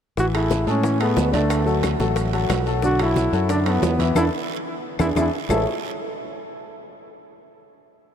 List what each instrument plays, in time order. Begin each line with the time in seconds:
0.17 fingered electric bass A1, grand piano E3 E4 E5, trombone F#4, high bongo, high conga, long guiro, maracas
0.34 grand piano A3 G#4 A4, trombone E4, high conga, high timbale, claves, maracas
0.51 high bongo, high conga, low timbale, short guiro, maracas
0.67 fingered electric bass A2, grand piano G#3 G#4 A4, trombone C#4, high conga, short guiro, maracas
0.83 grand piano E3 E4 E5, high bongo, high conga, high timbale, long guiro, maracas
1.00 grand piano A3 G#4 A4, trombone B3, high conga, high timbale, claves, maracas
1.17 fingered electric bass D2, high bongo, low bongo, high conga, low timbale, short guiro, maracas
1.32 grand piano D3 D4 D5, trombone A3, high conga, high timbale, short guiro, maracas
1.50 high bongo, high timbale, long guiro, claves, maracas
1.66 grand piano F#3 F#4 A4, high bongo, maracas
1.83 high bongo, high conga, high timbale, low timbale, short guiro, claves, maracas
2.00 fingered electric bass A1, grand piano F#3 F#4 A4, high bongo, high conga, short guiro, maracas
2.16 high bongo, high conga, high timbale, long guiro, maracas
2.33 grand piano F#3 F#4 A4, high conga, high timbale, maracas
2.50 fingered electric bass B1, high bongo, low bongo, high conga, high timbale, low timbale, short guiro, claves, maracas
2.66 grand piano F#3 F#4 A4, high bongo, short guiro, maracas
2.82 grand piano D3 D4 D5, trombone F#4, high bongo, high conga, long guiro, maracas
2.99 grand piano F#3 F#4 A4, trombone E4, high conga, high timbale, claves, maracas
3.16 high bongo, high conga, low timbale, short guiro, maracas
3.32 fingered electric bass F#2, grand piano F#3 F#4 A4, high conga, short guiro, maracas
3.49 grand piano D3 D4 D5, trombone D4, high bongo, high conga, high timbale, long guiro, maracas
3.66 grand piano F#3 F#4 A4, trombone B3, high conga, high timbale, claves, maracas
3.82 fingered electric bass E2, high bongo, low bongo, high conga, low timbale, short guiro, maracas
3.99 grand piano E3 E4 E5, high conga, high timbale, short guiro, maracas
4.15 fingered electric bass E2, grand piano D4 E4 A4, trombone E4, high bongo, high conga, high timbale, long guiro, claves, maracas
4.99 fingered electric bass E2, grand piano D4 E4 G#4, trombone E4, high bongo, high conga, high timbale, long guiro, claves, maracas
5.15 fingered electric bass E2, grand piano D4 E4 G#4, trombone E4, high bongo, high conga, high timbale, long guiro, claves, maracas
5.49 fingered electric bass A1, grand piano A3 E4 G#4 A4 C#5 E5, trombone A4, low bongo, low conga, low timbale, long guiro, claves, maracas